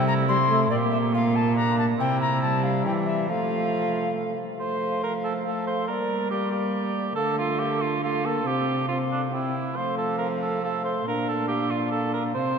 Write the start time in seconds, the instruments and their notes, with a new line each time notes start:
Already playing: cello C3, trombone G3, cor anglais E4
0.07 recorder A#5
0.28 trombone G3, recorder C6
0.50 trombone A3
0.70 cello A#2, trombone A#3, cor anglais G4, recorder D5
0.91 recorder E5
1.14 cor anglais F4, recorder F5
1.35 recorder A5
1.56 cor anglais D4, recorder A#5
1.79 recorder A5
1.99 cello C3, cor anglais E4, recorder G5
2.21 recorder A#5
2.42 trombone G3, recorder A5
2.63 recorder F5
2.86 cello E3, recorder G5
3.06 recorder E5
3.29 cello F3, trombone A3, cor anglais F4, recorder F5
4.60 cello F3, trombone A3, cor anglais C5, recorder F5
5.04 cor anglais A#4
5.24 cor anglais A4
5.46 trombone A3, cor anglais A4, recorder F5
5.67 cor anglais C5
5.88 cello G3, trombone A#3, cor anglais A#4, recorder D5
6.31 trombone A#3, cor anglais G4, recorder D5
6.52 cor anglais G4
7.16 cello D3, trombone A3, cor anglais A4, recorder F5
7.39 cor anglais F4
7.59 cor anglais G4
7.82 cor anglais F4
8.02 trombone A3, cor anglais F4, recorder F5
8.25 trombone A#3, cor anglais A4
8.46 cello C3, trombone C4, cor anglais G4, recorder F5
8.89 trombone C4, cor anglais F4, recorder F5
9.12 cor anglais D4
9.32 trombone C4, cor anglais E4, recorder G5
9.76 cello F3, trombone A3, cor anglais C5, recorder F5
9.98 cor anglais A4
10.18 cor anglais A#4
10.42 cor anglais A4
10.63 trombone A3, cor anglais A4, recorder F5
10.85 cor anglais C5
11.06 cello A#2, trombone D4, cor anglais A#4, recorder F5
11.29 cor anglais A4
11.48 cor anglais G4
11.71 cor anglais F4
11.92 cor anglais A4
12.14 cor anglais A#4
12.35 cello C3, trombone C4, cor anglais C5, recorder F5